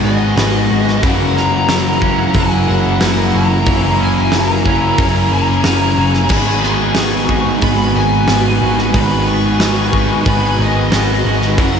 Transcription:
Already playing: G#2 D#3 G#3 B3 D#4 F#4 G#4 B4 G#5
0.03 G#1 D#3 D#5
0.36 G#1 G#2 D#3 G#3 B3, snare, open hi-hat
0.70 G#1 F#4
0.88 snare
1.02 F#1 F#2 C#3 E3 F#3 A#3 C#4 E4 A#4 F#5, kick, open hi-hat
1.36 A#3 A#5, snare
1.69 F#2 C#3 E3 F#3, snare, open hi-hat
2.00 F#2 C#3 F#3 A#3 C#4, kick
2.34 F#1 F#2 C#3 F#3 A#3 G#5, kick, open hi-hat
2.68 F#1 E3 F#5
3.00 F#1 F#2 C#3 F#3 A#3 F#5, snare, open hi-hat
3.34 F#1 F#4 A#5
3.66 F#1 F#2 C#3 E3 F#3 A#3 C#4 G#5, kick, open hi-hat
4.00 A#3 G#5
4.31 F#2 C#3 E3 F#3 A#5, snare, open hi-hat
4.66 F#2 C#3 F#3 A#3 C#4, kick
4.98 F#1 F#2 C#3 F#3 A#3, kick, open hi-hat
5.32 F#1 E3 A#5
5.64 F#1 F#2 C#3 F#3 A#3, snare, open hi-hat
5.97 F#1 F#4
6.14 snare
6.29 G#1 G#2 D#3 G#3 B3 D#4 F#4 B4 B5, kick, crash
6.61 B3 C#6, snare
6.95 G#2 D#3 G#3, snare, open hi-hat
7.28 G#2 D#3 G#3 B3 D#4, kick
7.61 G#1 G#2 D#3 G#3 B3 B5, kick, open hi-hat
7.95 G#1 D#3 G#5
8.27 G#1 G#2 D#3 G#3 B3, snare, open hi-hat
8.62 G#1 F#4
8.78 snare
8.93 G#1 G#2 D#3 G#3 B3 D#4 G#5 B5, kick, open hi-hat
9.27 B3 C#6
9.60 G#2 D#3 G#3, snare, open hi-hat
9.93 G#2 D#3 G#3 B3 D#4, kick
10.25 G#1 G#2 D#3 G#3 B3 B5, kick, open hi-hat
10.59 G#1 D#3 D#5
10.91 G#1 G#2 D#3 G#3 B3, snare, open hi-hat
11.25 G#1 F#4
11.41 snare
11.57 F#1 F#2 C#3 E3 F#3 A#3 C#4 E4 A#4 F#5, kick, open hi-hat

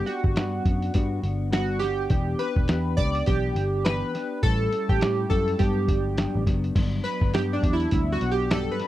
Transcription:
0.06 B3 D4 F#4, closed hi-hat
0.24 G1, kick
0.35 G2 G3 B3 D4 F#4, snare, closed hi-hat
0.65 F#2 B3 D4 F#4, kick, closed hi-hat
0.82 closed hi-hat
0.94 G2 G3 B3 D4 F#4, kick, closed hi-hat
1.22 G1 B3 D4 F#4, closed hi-hat
1.51 G3 B3 D4 F#4, snare, closed hi-hat
1.79 D4 F#4 G4, snare, closed hi-hat
1.84 B3
2.10 E1 E3 B3 D4 G4, kick, closed hi-hat
2.39 B3 D4 G4 B4, closed hi-hat
2.56 E1, kick
2.68 E2 E3 B3 D4 G4, snare, closed hi-hat
2.97 C#2 B3 D4 G4 D5, kick, closed hi-hat
3.15 closed hi-hat
3.26 B1 E3 B3 D4 G4, kick, closed hi-hat
3.55 G1 B3 D4 G4, closed hi-hat
3.85 E3 B3 D4 G4 B4, snare, closed hi-hat
4.13 B3 D4 G4, snare, closed hi-hat
4.42 A1 A2 G3 C#4 E4 A4, kick, closed hi-hat
4.72 G3 C#4 E4, closed hi-hat
4.89 A1 G4, kick
5.01 A2 G3 C#4 E4, snare, closed hi-hat
5.29 F#2 G3 C#4 E4 A4, kick, closed hi-hat
5.48 closed hi-hat
5.57 G2 F#3 B3 D4 G4, kick, closed hi-hat
5.88 G1 F#3 B3 D4, kick, closed hi-hat
6.17 G2 F#3 B3 D4, snare, closed hi-hat
6.35 A1
6.46 F#1 F#3 B3 D4, kick, snare, closed hi-hat
6.64 closed hi-hat
6.75 G1 G2 F#3 B3 D4, kick, closed hi-hat, crash
7.04 B3 D4 B4, closed hi-hat
7.08 F#3
7.21 G1, kick
7.33 G2 F#3 B3 D4 G4, snare, closed hi-hat
7.53 D4
7.62 E2 F#3 B3 D4, kick, closed hi-hat
7.73 E4
7.80 closed hi-hat
7.91 D2 G2 F#3 B3 D4, kick, closed hi-hat
8.12 F#4
8.20 B1 F#3 B3 D4, closed hi-hat
8.31 G4
8.51 G2 F#3 B3 D4 A4, snare, closed hi-hat
8.71 B4
8.79 F#3 B3 D4, snare, closed hi-hat

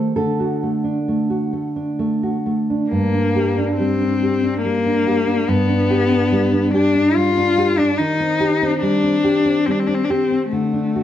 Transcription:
Already playing: D#3 A4 C5
0.16 D3 A4
0.40 F#4
0.63 A3
0.84 D4
1.08 A3
1.30 F#4
1.53 A3
1.76 D4
1.99 A3
2.23 F#4
2.46 A3
2.70 D4
2.90 G2 A#3
3.14 D4
3.36 G4
3.58 D4
3.77 G3 C4
4.01 D4
4.23 G4
4.43 D4
4.62 G3 A#3
4.86 D4
5.07 G4
5.26 D4
5.48 G2 B3
5.69 D4
5.90 G4
6.11 D4
6.32 G3
6.52 D4
6.74 D4 G4
6.95 D4
7.15 G3 F4
7.37 D4
7.58 G4
7.79 D4
7.98 D#3 D#4
8.20 C4
8.40 G4
8.62 C4
8.81 G3 D4
9.03 C4
9.24 G4
9.45 C4
9.66 G3 C4
9.71 D4
9.80 C4
9.87 C4 D4
9.94 C4
10.04 D4
10.10 C4 G4
10.31 C4
10.50 D3 A3
10.73 D4
10.96 F#4

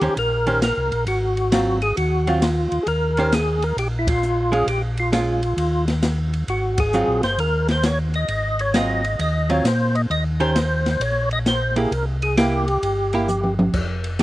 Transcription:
Already playing: G4
0.01 D#2 D#3 C#4 G4 C5, ride
0.17 A#1 A#4, ride
0.47 D#3 C#4 G4 C5, ride
0.62 A#4, snare, hi-hat pedal, ride
0.77 C2
0.92 A#1, ride
1.07 G#1 F#4, ride
1.37 ride
1.52 F#3 C4 F4, snare, hi-hat pedal, ride
1.82 G#4, ride
1.97 D#2 F#4, ride
2.27 F#3 C4 F4, ride
2.42 F4, snare, hi-hat pedal, ride
2.71 D#2, ride
2.83 D#2 G#4, ride
2.88 A#4
3.17 D#3 C#4 G4 C5, ride
3.32 G#4, snare, hi-hat pedal, ride
3.62 A#4, ride
3.77 A#1 G4, ride
3.99 E4
4.07 F4, kick, ride
4.23 hi-hat pedal
4.52 G#3 C#4 F4 G#4, ride
4.66 A#1 G4, ride
4.97 F4, ride
5.12 G#3 C#4 F4, snare, hi-hat pedal, ride
5.43 ride
5.57 D#2, ride
5.88 snare, ride
6.03 snare, hi-hat pedal, ride
6.33 ride
6.47 G#1 F#4, ride
6.78 G#4, kick, ride
6.93 F#3 C4 F4, hi-hat pedal
7.08 A#1
7.23 G1 C5, snare, ride
7.38 D#2 A#4, ride
7.68 C5, snare, ride
7.83 C#5, snare, hi-hat pedal, ride
8.14 D#5, ride
8.28 G#1, ride
8.59 C#5, ride
8.74 F#3 C4 F4 D#5, snare, hi-hat pedal, ride
9.04 ride
9.19 D#2 D#5, ride
9.50 F#3 C4 F4 C#5, ride
9.64 A#2 C5, snare, hi-hat pedal, ride
9.95 D#5, ride
10.10 D#2 D#5, ride
10.40 D#3 C#4 G4 C5, ride
10.56 snare, hi-hat pedal, ride
10.86 snare, ride
11.00 A#1 C#5, ride
11.31 D#5, ride
11.46 C5, snare, hi-hat pedal, ride
11.76 A#3 E4 G4 G#4, ride
11.91 C2 A#4, ride
12.22 G#4, ride
12.37 A#3 E4 G4, snare, hi-hat pedal, ride
12.68 ride
12.83 G1, ride
13.13 A#3 E4 G4, ride
13.28 hi-hat pedal, mid tom
13.44 mid tom
13.59 mid tom
13.73 F1, kick, crash
14.04 ride
14.19 snare, hi-hat pedal, ride

